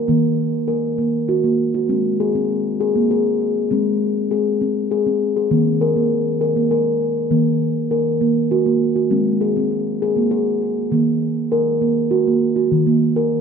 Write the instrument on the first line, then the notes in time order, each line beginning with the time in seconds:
steel tongue drum
0.08 D#3 A#3
0.68 A#4
0.98 A#3
1.29 F#4
1.44 A#3
1.74 F#4
1.89 G#3 C4
2.20 G#4
2.35 C4
2.80 G#4
2.95 A#3
3.11 G#4
3.71 G#3 C4
4.31 G#4
4.61 C4
4.91 G#4
5.06 C4
5.37 G#4
5.51 D#3 A#3
5.81 A#4
5.96 A#3
6.41 A#4
6.56 A#3
6.71 A#4
7.31 D#3 A#3
7.91 A#4
8.21 A#3
8.51 F#4
8.66 A#3
8.96 F#4
9.11 G#3 C4
9.41 G#4
9.57 C4
10.02 G#4
10.16 A#3
10.31 G#4
10.91 D#3 A#3
11.52 A#4
11.81 A#3
12.11 F#4
12.27 A#3
12.56 F#4
12.72 D#3
12.87 A#3
13.16 A#4